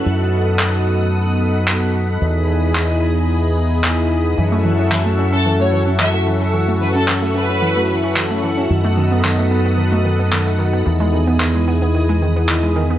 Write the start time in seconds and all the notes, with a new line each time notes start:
Already playing: A4 F#5
0.04 F#2 B3 D#4 F#4 A4 D#5 B5 D#6
0.59 clap
1.68 clap
2.21 E2 B3 D#4 E4 G#4 D#5 B5 D#6
2.75 clap
3.84 clap
4.37 F#2 E3 C#4 E4 F#4 A4 E5 F#5 C#6 E6
4.52 A3
4.65 E3
4.79 C#4
4.92 E3, clap
5.06 A3
5.19 C#4
5.33 C#4 A4
5.46 E3
5.60 A3 C#5
5.73 E3
5.87 C#4
6.00 E3 E5, clap
6.14 A3
6.27 E3
6.41 C#4
6.54 E3
6.68 A3
6.81 E3 B4
6.95 C#4 A4
7.08 E3, clap
7.22 A3
7.35 C#4 B4
7.49 C#4
7.62 E3
7.76 A3
7.89 E3
8.04 C#4
8.16 E3, clap
8.31 A3
8.43 E3
8.57 C#4
8.69 F#2 D#3 B3 D#4 F#4 A4 D#5 B5 D#6
8.85 A3
8.97 D#3
9.12 B3
9.24 D#3, clap
9.39 A3
9.51 B3
9.66 B3
9.78 D#3
9.92 A3
10.05 D#3
10.19 B3
10.32 D#3, clap
10.46 A3
10.59 D#3
10.73 B3
10.85 E2 D#3 B3 D#4 E4 G#4 D#5 D#6
11.00 G#3
11.13 D#3
11.27 B3
11.40 D#3, clap
11.55 G#3
11.68 B3
11.82 B3
11.95 D#3
12.09 G#3
12.22 D#3
12.36 B3
12.49 D#3, clap
12.63 G#3
12.76 D#3
12.90 B3